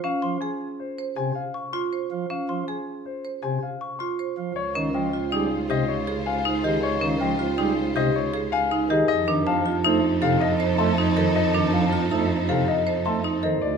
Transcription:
0.04 C#4 F5
0.22 F3 C6
0.41 G#4 G#5
0.80 C5
0.98 C5
1.16 C3 G#5
1.35 F5
1.54 C#6
1.73 F4 C6
1.93 C5
2.11 F3
2.30 C#4 F5
2.49 F3 C6
2.68 G#4 G#5
3.06 C5
3.25 C5
3.43 C3 G#5
3.63 F5
3.81 C#6
3.99 F4 C6
4.19 C5
4.38 F3
4.56 C#2 F4 C5 C#5
4.75 D#3 C#4
4.94 F3 D#5 G5
5.13 F4
5.32 G3 D#4 G#4
5.69 C3 G4 D#5
5.88 C#5
6.07 G#4
6.26 F5 G#5
6.45 D#4
6.63 D#3 G4 G#4 D#5
6.83 C#5
7.01 D#3 C#4
7.20 F3 D#5 G5
7.39 F4
7.58 G3 D#4 G#4
7.95 C3 G4 D#5
8.15 C#5
8.34 G#4
8.52 F5 G#5
8.71 D#4
8.89 D#3 G4 G#4 D#5
9.08 F2 D#4 A4 D#5
9.27 D#3 D4
9.47 F3 F5 A5
9.66 F4
9.84 A3 D#4 C5
10.22 C3 A4 F5
10.40 D#5
10.60 C5
10.78 A3 A5 C6
10.98 D#4
11.17 D#3 A4 C5 D#5
11.36 D#5
11.54 D#3 D4
11.73 F3 F5 A5
11.93 F4
12.11 A3 D#4 C5
12.49 C3 A4 F5
12.68 D#5
12.87 C5
13.06 A3 A5 C6
13.24 D#4
13.43 D#3 A4 C5 D#5
13.62 D2 D4 G4 D5

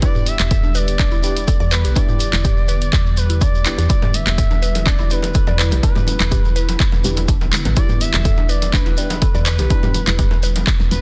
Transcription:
Already playing: D3 G3 B3 G4
0.02 D4 E4 G4 B4 D5, kick, closed hi-hat, shekere
0.15 G4, mid tom, shekere
0.26 E5, closed hi-hat, shekere
0.39 E1, clap, closed hi-hat, shekere
0.51 A4, kick, closed hi-hat, mid tom, shekere
0.63 D4, shekere
0.75 B4 D5, closed hi-hat, shekere
0.88 closed hi-hat, shekere
0.99 D1 D4, kick, clap, shekere
1.11 E4, shekere
1.23 E1 D4 E4 G4 B4 D5, closed hi-hat, shekere
1.37 closed hi-hat, shekere
1.47 A4, kick, closed hi-hat, shekere
1.60 E2 D5, shekere
1.71 B4, clap, closed hi-hat, shekere
1.85 B1 G4, closed hi-hat, shekere
1.96 D4 E4 G4 B4 D5, kick, closed hi-hat, shekere
2.09 G4, mid tom, shekere
2.20 closed hi-hat, shekere
2.33 E1 E4, clap, closed hi-hat, shekere
2.44 G4, kick, closed hi-hat, mid tom, shekere
2.57 shekere
2.68 B4, closed hi-hat, shekere
2.81 closed hi-hat, shekere
2.93 E2, kick, clap, closed hi-hat, shekere
3.06 shekere
3.17 B4, closed hi-hat, shekere
3.29 E4, closed hi-hat, shekere
3.41 D4 D5, kick, closed hi-hat, shekere
3.55 shekere
3.65 E1 D4 E4 G4 B4, clap, closed hi-hat, shekere
3.78 E2 B4, closed hi-hat, shekere
3.89 D4 E4 D5, kick, closed hi-hat, shekere
4.02 G4, mid tom, low bongo, high conga, shekere
4.14 E5, closed hi-hat, muted conga, shekere
4.26 E1, clap, closed hi-hat, high bongo, low bongo, shekere
4.38 A4, kick, closed hi-hat, mid tom, shekere
4.51 D4, low bongo, muted conga, shekere
4.62 B4, closed hi-hat, shekere
4.75 closed hi-hat, low bongo, shekere
4.86 D1 D4 D5, kick, clap, muted conga, high conga, low conga, shekere
4.99 E4, high bongo, low bongo, shekere
5.10 E1 D4 E4 G4 B4 D5, closed hi-hat, shekere
5.23 closed hi-hat, low bongo, muted conga, shekere
5.34 A4, kick, closed hi-hat, shekere
5.47 E2 D5, low bongo, shekere
5.59 B4, clap, closed hi-hat, shekere
5.71 B1 G4, closed hi-hat, low bongo, muted conga, shekere
5.83 D4 E4 G4 B4, kick, closed hi-hat, shekere
5.95 G4, mid tom, high bongo, low bongo, high conga, shekere
6.07 closed hi-hat, muted conga, low conga, shekere
6.19 E1 E4, clap, closed hi-hat, low bongo, shekere
6.31 G4, kick, closed hi-hat, mid tom, low conga, shekere
6.45 low bongo, muted conga, shekere
6.56 B4, closed hi-hat, shekere
6.69 closed hi-hat, low bongo, shekere
6.80 kick, clap, muted conga, shekere
6.92 E1, low bongo, shekere
7.04 E1 D4 E4 G4 B4, closed hi-hat, high conga, low conga, shekere
7.17 E4, closed hi-hat, high bongo, low bongo, muted conga, shekere
7.28 D4, kick, closed hi-hat, shekere
7.41 G1, low bongo, shekere
7.53 clap, closed hi-hat, high conga, shekere
7.65 A1 B4, closed hi-hat, low bongo, muted conga, shekere
7.76 D4 E4 G4 B4 D5, kick, closed hi-hat, shekere
7.89 G4, mid tom, low bongo, high conga, shekere
8.01 E5, closed hi-hat, muted conga, shekere
8.13 E1, clap, closed hi-hat, high bongo, low bongo, shekere
8.25 A4, kick, closed hi-hat, mid tom, shekere
8.37 D4, low bongo, muted conga, shekere
8.49 B4 D5, closed hi-hat, shekere
8.62 closed hi-hat, low bongo, shekere
8.67 D5
8.73 D1 D4 B4, kick, clap, muted conga, high conga, low conga, shekere
8.86 E4, high bongo, low bongo, shekere
8.97 E1 D4 E4 G4 B4 D5, closed hi-hat, shekere
9.10 closed hi-hat, low bongo, muted conga, shekere
9.22 A4, kick, closed hi-hat, shekere
9.34 E2 D5, low bongo, shekere
9.45 B4, clap, closed hi-hat, shekere
9.58 B1 G4, closed hi-hat, low bongo, muted conga, shekere
9.70 D4 E4 G4 B4, kick, closed hi-hat, shekere
9.83 G4, mid tom, high bongo, low bongo, high conga, shekere
9.94 closed hi-hat, muted conga, low conga, shekere
10.07 E1 E4, clap, closed hi-hat, low bongo, high conga, shekere
10.19 G4, kick, closed hi-hat, mid tom, low conga, shekere
10.30 low bongo, muted conga, high conga, shekere
10.43 B4, closed hi-hat, shekere
10.56 closed hi-hat, low bongo, shekere
10.67 kick, clap, muted conga, shekere
10.80 E1, low bongo, shekere
10.91 E1 B4, closed hi-hat, high conga, low conga, shekere

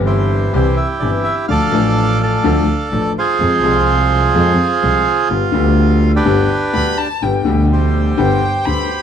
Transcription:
Already playing: G1 G2 E3 G3 C4 G4
0.06 E4 G4 C5
0.53 C2 C3 E3 G3 C4 E4 G4 C5
0.77 E5
1.00 G1 G2 E3 G3 C4 G4 D5
1.24 E5
1.48 D2 D3 F3 A3 D4 A4 D5 F5
1.71 A1 A2 F3 A3 D4 A4
2.21 A4 D5 F5
2.44 D2 D3 F3 A3 D4 A4
2.91 A1 A2 F3 A3 D4 A4
3.18 F4 G#4 C5
3.39 F2 F3 G#3 C4 G#4
3.62 C2 C3 F3 G#3 C4
3.66 G#4
4.34 F2 F3 G#3 C4 G#4
4.83 C2 C3 F3 G#3 C4 G#4
5.31 G1 G2 D3 G3 B3 G4
5.52 D2 D3 G3 B3 G4
6.16 D4 G4 B4
6.25 G1 G2 D3 G3 B3 G4
6.73 D2 D3 G3 B3 G4 B5
6.98 A5
7.22 G1 G2 D3 G3 B3 G4 G5
7.45 D2 B2 D3 G3
7.49 G4
7.73 G4 C5
8.18 G1 G2 D3 G3 B3 G4 G5
8.65 D2 D3 G3 B3 G4 B5

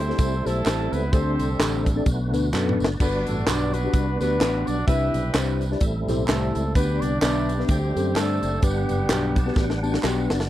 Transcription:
Already playing: D2 G3 A3 C4 E4 G4 A4
0.00 C4 E4 A4 C5
0.08 C4 E4 G4 A4 C5, snare
0.18 C2, kick, closed hi-hat, tambourine
0.45 B1 A3 C4 E4 G4 A4 C5, snare, closed hi-hat, tambourine
0.65 A1 C4 E4 G4 A4 C5, snare, clap, closed hi-hat, tambourine
0.92 C#2 B3 B4, closed hi-hat, tambourine
1.11 D2 D3 G3 A3 C4 D4 G4 G#4 A4 C5, kick, closed hi-hat, tambourine
1.20 A4
1.39 C2, closed hi-hat, tambourine
1.59 A1 C4 D4 G4 A4 C5, snare, clap, closed hi-hat, tambourine
1.86 kick, closed hi-hat, tambourine
1.95 C4 D4 G4 A4 D5
2.06 B1 B2 A3 B3 D4 F#4 A#4, kick, closed hi-hat, tambourine
2.12 B4
2.32 D2 B3 D4 F#4 A4 B4, snare, closed hi-hat, tambourine
2.52 F#2 B3 D4 F#4 A4 B4 D5 F#5, snare, clap, tambourine
2.69 mid tom
2.79 F#1 B4 D5, tambourine
2.84 snare
2.99 G1 G2 G3 B3 D4 F#4 A4 B4, kick, tambourine, crash
3.06 B4
3.27 A1 A3 A4, closed hi-hat, tambourine
3.46 B1 B3 D4 F#4 G4 B4 D5, snare, clap, closed hi-hat, tambourine
3.73 B3 D4 F#4 B4, closed hi-hat, tambourine
3.83 B3 D4 F#4 G4 B4
3.93 C2, kick, closed hi-hat, tambourine
4.20 D2 B3 D4 F#4 G4 B4, snare, closed hi-hat, tambourine
4.40 A1 G3 B3 D4 F#4 B4, snare, clap, closed hi-hat, tambourine
4.67 B1 D4 D5, closed hi-hat, tambourine
4.87 C2 C3 G3 C4 D4 D#4 E4 G4 B4 E5, kick, closed hi-hat, tambourine
4.93 E4
5.14 B1, closed hi-hat, tambourine
5.33 C2 C4 D4 E4 G4 C5, snare, clap, closed hi-hat, tambourine
5.61 closed hi-hat, tambourine
5.70 C4 D4 E4 G4 D5, snare
5.80 A1 A2 G3 A3 C4 E4 A4, kick, closed hi-hat, tambourine
6.08 B1 C4 E4 G4 A4 C5, snare, closed hi-hat, tambourine
6.28 C2 A3 C4 E4 G4 A4 B4, snare, clap, closed hi-hat, tambourine
6.35 C5
6.55 C#2, closed hi-hat, tambourine
6.75 D2 D3 B3 D4 G4 B4 D5, kick, closed hi-hat, tambourine
7.01 C2 D4 D5, closed hi-hat, tambourine
7.22 B1 B3 D4 G4 B4 D5 E5, snare, clap, closed hi-hat, tambourine
7.49 closed hi-hat, tambourine
7.58 B3 D4 G4 B4 E5, snare
7.69 D2 D3 G3 A3 C4 D4 G4 C5, kick, closed hi-hat, tambourine
7.95 F#2 C4 D4 G4 A4 C5, closed hi-hat, tambourine
8.15 G2 A3 C4 D4 G4 A4 C5, snare, clap, closed hi-hat, tambourine
8.23 D5
8.42 F#1, closed hi-hat, tambourine
8.62 G1 G2 G3 B3 D4 G4 B4 F#5, kick, closed hi-hat, tambourine
8.89 F#1, closed hi-hat, tambourine
9.09 B1 B3 D4 F#4 G4 B4, snare, clap, closed hi-hat, tambourine
9.36 A5, kick, closed hi-hat, tambourine
9.46 B3 D4 F#4 G4 B4
9.56 A1 G5, kick, snare, tambourine
9.70 snare
9.82 B3 D4 F#4 G4 D5 A5, tambourine
9.94 snare
10.02 B1 B3 D4 F#4 G4 B4 F#5 G5, snare, clap, tambourine
10.30 F#1 D5 F#5, snare, tambourine
10.40 snare

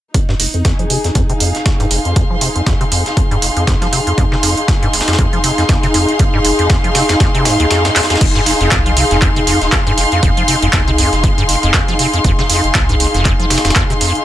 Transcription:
0.14 F2 D#4, kick, closed hi-hat
0.29 G2, snare
0.40 F1, open hi-hat
0.54 F2, closed hi-hat
0.65 F2, kick, snare, closed hi-hat
0.71 G#4
0.79 F3, closed hi-hat
0.90 C3, closed hi-hat, open hi-hat
1.04 F2, snare, closed hi-hat
1.15 F2, kick, closed hi-hat
1.30 C3, closed hi-hat
1.34 F5
1.40 F2, closed hi-hat, open hi-hat
1.55 snare, closed hi-hat
1.66 F2, kick, snare, closed hi-hat
1.80 G2, closed hi-hat
1.90 F1 C6, closed hi-hat, open hi-hat
2.05 F2, closed hi-hat
2.16 F2, kick, closed hi-hat
2.30 F3
2.41 C3, closed hi-hat, open hi-hat
2.56 F2, closed hi-hat
2.66 F2, kick, snare, closed hi-hat
2.81 C3, closed hi-hat
2.92 F2, closed hi-hat, open hi-hat
3.06 snare, closed hi-hat
3.17 F2, kick, closed hi-hat
3.31 G2, closed hi-hat
3.42 F1, closed hi-hat, open hi-hat
3.56 F2, closed hi-hat
3.67 F2, kick, snare, closed hi-hat
3.81 F3, snare, closed hi-hat
3.92 C3, closed hi-hat, open hi-hat
4.07 F2, closed hi-hat
4.18 F2, kick, closed hi-hat
4.32 C3, snare
4.43 F2, open hi-hat
4.57 closed hi-hat
4.68 F2, kick, snare, closed hi-hat
4.82 G2, closed hi-hat
4.93 F1, closed hi-hat, open hi-hat
5.01 snare, closed hi-hat
5.08 F2, snare, closed hi-hat
5.13 snare, closed hi-hat
5.19 F2, kick, closed hi-hat
5.33 F3, closed hi-hat
5.44 C3, closed hi-hat, open hi-hat
5.58 F2, snare, closed hi-hat
5.69 F2, kick, snare, closed hi-hat
5.83 C3, closed hi-hat
5.94 F2, closed hi-hat, open hi-hat
6.09 closed hi-hat
6.19 F2, kick, closed hi-hat
6.34 G2
6.45 F1, closed hi-hat, open hi-hat
6.59 F2, closed hi-hat
6.70 F2, kick, snare, closed hi-hat
6.84 F3, closed hi-hat
6.95 C3, snare, closed hi-hat, open hi-hat
7.09 F2, snare, closed hi-hat
7.20 F2, kick, snare, closed hi-hat
7.34 C3, closed hi-hat
7.45 G#2, snare, closed hi-hat, open hi-hat
7.60 D#2, closed hi-hat
7.71 F2, snare, closed hi-hat
7.85 G#2, snare, closed hi-hat
7.96 F2, snare, clap, closed hi-hat, open hi-hat
8.03 snare, closed hi-hat
8.10 F2, snare, closed hi-hat
8.16 snare, closed hi-hat
8.21 F1 F2, kick, closed hi-hat, crash
8.35 G2, snare
8.46 F1, open hi-hat
8.61 F1 F2, closed hi-hat
8.71 C2 F2, kick, snare, clap, closed hi-hat
8.86 F3, closed hi-hat
8.97 C3, closed hi-hat, open hi-hat
9.11 F1 F2, snare, closed hi-hat
9.22 F2, kick, clap, closed hi-hat
9.36 C3, closed hi-hat
9.47 F2, closed hi-hat, open hi-hat
9.61 D#1, snare, closed hi-hat
9.72 F2, kick, snare, clap, closed hi-hat
9.87 G2, closed hi-hat
9.98 F1, closed hi-hat, open hi-hat
10.12 F2, closed hi-hat
10.23 F1 F2, kick, closed hi-hat
10.37 F3, closed hi-hat
10.48 C3, closed hi-hat, open hi-hat
10.62 F1 F2, closed hi-hat
10.73 C2 F2, kick, snare, clap, closed hi-hat
10.88 C3, closed hi-hat
10.98 F2, closed hi-hat, open hi-hat
11.13 F1, snare, closed hi-hat
11.24 F2, kick, closed hi-hat
11.38 G2, closed hi-hat
11.49 F1, closed hi-hat, open hi-hat
11.63 D#1 F2, closed hi-hat
11.74 F2, kick, snare, clap, closed hi-hat
11.88 F3, snare, closed hi-hat
11.99 C3, closed hi-hat, open hi-hat
12.13 F2, closed hi-hat
12.24 F1 F2, kick, closed hi-hat
12.39 C3, snare
12.50 F2, open hi-hat
12.64 F1, closed hi-hat
12.75 C2 F2, kick, snare, clap, closed hi-hat
12.89 G2, closed hi-hat
13.00 F1, closed hi-hat, open hi-hat
13.14 F1 F2, snare, closed hi-hat
13.25 F2, kick, clap, closed hi-hat
13.39 F3, closed hi-hat
13.50 C3, snare, closed hi-hat, open hi-hat
13.58 snare, closed hi-hat
13.65 D#1 F2, snare, closed hi-hat
13.70 snare, closed hi-hat
13.76 F2, kick, snare, clap, closed hi-hat
13.90 C3, closed hi-hat
14.01 F2, closed hi-hat, open hi-hat
14.15 closed hi-hat

